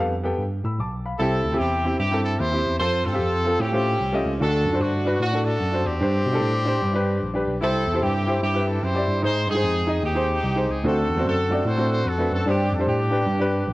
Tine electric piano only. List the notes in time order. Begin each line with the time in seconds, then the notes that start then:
0.00 F2
0.38 G2
0.64 A2
0.79 B1
1.19 C2
1.44 D2
1.59 E2
2.00 G2
2.40 D#2
2.66 E2
2.80 F2
3.05 G2
3.19 F2
3.60 A2
4.00 C2
4.26 C#2
4.40 D2
4.65 F#2
4.80 G2
5.20 A2
5.61 F#2
5.86 E2
6.01 G2
6.26 B2
6.41 A2
6.82 G2
7.22 A#1
7.47 B1
7.62 C2
7.87 E2
8.02 G2
8.43 G2
8.83 F#2
9.08 G2
9.23 G#2
9.48 G2
9.64 F2
10.03 D#2
10.43 C2
10.70 C#2
10.84 D2
11.10 E2
11.25 F#2
11.65 A2
12.06 F2
12.31 F#2
12.46 G2
12.72 F2
12.87 A2
13.27 G2
13.67 A#1